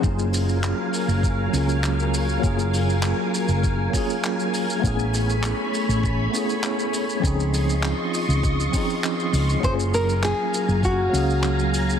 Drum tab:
HH |--o---o---o---o-|--o---o---o---o-|--o---o---o---o-|--o---o---o---o-|
SH |xxxxx-xxx-xxxxxx|xxxxx-xxx-xxxxxx|xxxxx-xxx-xxxxxx|xxxxx-xxxxxxxxxx|
CP |----x-------x---|----x-------x---|----x-------x---|----x-------x---|
BD |o-------o-------|o-------o-o-----|o-------o-------|o-------o-o-----|

HH |--o---o---o---o-|
SH |xxxxx-xxx-xxxxxx|
CP |----x-------x---|
BD |o-------o-------|